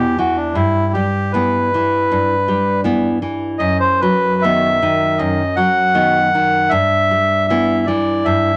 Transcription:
0.00 0.51 E2 medium
0.00 0.15 E3 soft
0.00 0.15 B3 soft
0.00 0.18 G4 medium
0.18 0.56 E3 soft
0.18 0.37 F#4 medium
0.36 0.55 D4 medium
0.54 2.06 G2 medium
0.54 0.92 E4 medium
0.93 1.57 G3 soft
0.93 1.32 G4 medium
1.32 1.69 E3 soft
1.32 1.69 B3 soft
1.32 2.81 B4 medium
1.74 2.34 E3 soft
2.12 3.56 G2 medium
2.48 3.06 G3 soft
2.84 3.17 E3 soft
2.84 3.18 B3 soft
3.22 3.60 E3 soft
3.58 5.16 F#2 medium
3.58 3.78 D#5 medium
3.80 4.01 C5 medium
4.01 4.67 F#3 soft
4.01 4.43 B4 medium
4.42 4.79 D#3 soft
4.42 4.79 B3 soft
4.42 5.19 E5 medium
4.82 5.42 D#3 soft
5.18 6.67 F#2 medium
5.18 5.56 D#5 medium
5.56 6.17 F#3 soft
5.56 6.71 F#5 medium
5.95 6.29 D#3 soft
5.95 6.29 B3 medium
6.35 6.72 D#3 soft
6.69 8.23 G2 medium
6.69 7.46 E5 medium
7.11 7.73 G3 soft
7.48 7.85 E3 soft
7.48 7.85 B3 soft
7.48 7.86 E5 medium
7.86 8.51 E3 soft
7.86 8.26 D5 medium
8.25 8.57 G2 soft
8.25 8.57 E5 medium

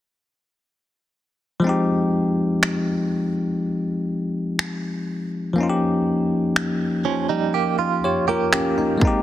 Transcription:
1.60 5.51 F3 medium
1.60 5.52 G#3 medium
1.64 5.53 C4 medium
1.64 5.55 D#4 medium
1.69 5.56 G4 medium
2.63 finger snap loud
4.59 finger snap loud
5.53 8.96 F3 medium
5.53 7.98 A#3 medium
5.58 8.00 C#4 medium
5.58 8.01 D#4 medium
5.63 5.67 F4 medium
5.70 8.04 G4 medium
6.56 finger snap loud
7.05 7.28 F3 medium
7.05 7.28 C#4 medium
7.29 7.53 G3 medium
7.29 7.53 D#4 medium
7.54 7.78 A#3 medium
7.54 7.77 G4 medium
7.79 8.25 F4 medium
8.04 8.27 G4 soft
8.04 8.27 C#5 medium
8.28 8.98 A#3 medium
8.28 8.52 F4 medium
8.28 8.98 G4 medium
8.28 8.52 A#4 medium
8.53 8.77 C#4 medium
8.53 8.76 G4 medium
8.53 finger snap loud
8.78 8.99 A#3 medium
8.78 9.04 D#4 medium
8.98 9.23 G#3 medium
8.98 9.23 A#3 medium
8.98 kick loud
9.03 9.23 C4 medium
9.03 9.23 D#4 medium
9.07 9.23 G4 medium

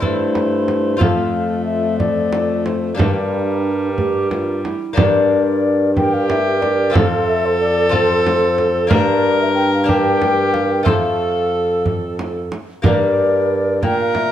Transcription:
0.00 1.03 G2 medium
0.00 0.97 G2 soft
0.00 1.00 A3 medium
0.00 0.96 C4 soft
0.00 0.97 E4 soft
0.00 1.02 E4 medium
0.00 0.98 A4 soft
0.00 0.99 C5 medium
0.00 frame drum soft
0.35 frame drum soft
0.68 frame drum soft
0.97 2.94 F2 soft
0.97 2.93 C4 soft
0.97 2.93 F4 soft
0.97 2.74 F4 medium
0.97 2.94 A4 soft
0.97 1.65 F5 medium
1.01 2.98 F2 medium
1.01 2.95 A3 medium
1.01 frame drum medium
1.65 1.98 E5 medium
1.98 2.67 D5 medium
1.98 frame drum soft
2.33 frame drum medium
2.65 2.98 C5 medium
2.65 frame drum soft
2.95 4.62 G2 medium
2.95 4.61 G2 soft
2.95 4.73 G3 medium
2.95 4.91 A#3 soft
2.95 4.92 D4 soft
2.95 3.89 D4 medium
2.95 4.93 G4 soft
2.95 4.61 A#4 medium
2.99 frame drum medium
3.98 4.29 G4 medium
3.98 frame drum soft
4.31 4.66 F4 medium
4.31 frame drum soft
4.64 4.97 E4 medium
4.64 frame drum soft
4.93 6.90 G2 soft
4.93 6.88 A#3 soft
4.93 6.89 D4 soft
4.93 6.90 G4 soft
4.93 5.92 D5 medium
4.97 6.96 G2 medium
4.97 5.92 A#4 medium
4.97 frame drum medium
5.96 6.98 G4 medium
5.96 6.98 A#4 medium
5.96 6.15 G5 loud
5.96 frame drum soft
6.14 6.29 F5 medium
6.30 6.63 E5 medium
6.30 frame drum medium
6.62 6.95 D5 medium
6.62 frame drum soft
6.90 8.86 F2 medium
6.90 7.87 C4 medium
6.90 7.88 F4 medium
6.90 7.89 A4 soft
6.94 8.91 F2 medium
6.94 8.90 A4 medium
6.94 7.94 A4 medium
6.94 7.27 F5 medium
6.94 frame drum medium
7.28 7.47 E5 loud
7.46 7.60 C5 medium
7.61 7.95 D5 medium
7.89 8.86 C4 medium
7.89 8.87 F4 medium
7.89 8.87 A4 medium
7.89 8.90 C5 loud
7.89 frame drum soft
7.94 8.93 A4 medium
8.27 frame drum medium
8.58 frame drum soft
8.87 10.83 G2 medium
8.87 9.83 A#3 medium
8.87 9.84 D4 medium
8.87 9.85 A#4 medium
8.87 9.38 D5 medium
8.87 frame drum medium
8.91 10.84 G2 medium
8.91 9.91 A#4 medium
8.91 9.62 A#4 medium
9.41 9.47 E5 medium
9.55 9.71 G5 loud
9.74 9.88 F5 medium
9.84 10.82 A#3 soft
9.84 10.83 D4 soft
9.84 10.83 A#4 soft
9.88 10.87 G4 medium
9.88 10.89 A#4 medium
9.88 10.55 G5 loud
9.88 frame drum soft
10.22 frame drum medium
10.54 10.73 F5 medium
10.54 frame drum soft
10.71 10.87 G5 medium
10.83 12.79 A3 soft
10.83 12.80 A4 soft
10.83 12.80 C5 soft
10.83 frame drum medium
10.87 12.50 F2 medium
10.87 12.49 F2 soft
10.87 12.53 A4 medium
10.87 12.33 A4 medium
10.87 11.85 F5 medium
11.86 frame drum soft
12.19 frame drum medium
12.52 frame drum soft
12.82 13.85 G2 medium
12.82 13.80 G2 medium
12.82 14.32 A#3 soft
12.82 14.32 G4 soft
12.82 14.32 A#4 soft
12.82 13.79 A#4 medium
12.82 13.80 D5 medium
12.82 frame drum medium
13.82 14.32 A#2 medium
13.82 14.32 A#4 medium
13.82 14.00 G5 loud
13.82 frame drum soft
14.00 14.17 F5 medium
14.15 14.32 E5 medium
14.15 frame drum medium

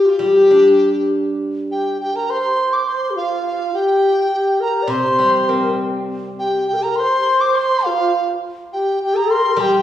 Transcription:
0.00 0.11 G4 medium
0.05 0.21 F4 medium
0.05 0.24 F4 medium
0.19 1.99 G3 soft
0.19 1.09 G4 medium
0.19 1.11 G4 medium
0.51 1.70 D4 soft
1.70 1.97 G4 medium
1.70 1.98 G5 medium
2.00 2.14 G4 medium
2.00 2.17 G5 medium
2.14 2.31 A#4 medium
2.14 2.31 A#5 medium
2.30 2.87 C5 medium
2.30 2.75 C6 loud
2.73 2.90 D6 medium
2.88 3.12 C5 medium
2.88 3.16 C6 medium
3.10 3.17 G4 medium
3.16 3.73 F4 medium
3.16 3.43 F5 medium
3.46 3.77 F5 medium
3.73 4.27 G4 medium
3.73 4.61 G5 loud
4.31 4.62 G4 medium
4.60 4.84 A#4 medium
4.60 4.91 A#5 medium
4.83 4.91 D5 medium
4.87 6.68 C3 medium
4.87 5.50 C5 medium
4.87 5.79 C6 loud
5.18 6.39 G3 soft
5.49 6.69 C4 soft
5.49 5.79 A#4 medium
6.39 6.67 G4 medium
6.39 6.67 G5 medium
6.68 6.75 G4 medium
6.68 6.84 G5 medium
6.74 6.86 G4 medium
6.74 6.79 A#4 medium
6.83 7.01 A#4 medium
6.83 6.97 A#5 medium
6.96 7.42 C6 loud
7.00 7.88 C5 loud
7.41 7.57 D6 medium
7.55 7.86 C6 loud
7.85 8.29 F4 medium
7.85 8.28 F5 medium
8.73 9.00 G4 medium
8.73 9.00 G5 medium
9.02 9.18 G4 medium
9.02 9.18 G5 medium
9.16 9.63 A#4 loud
9.16 9.32 A#5 loud
9.31 9.62 C6 loud
9.56 9.82 G3 medium
9.56 9.82 G5 loud
9.61 9.82 G4 medium

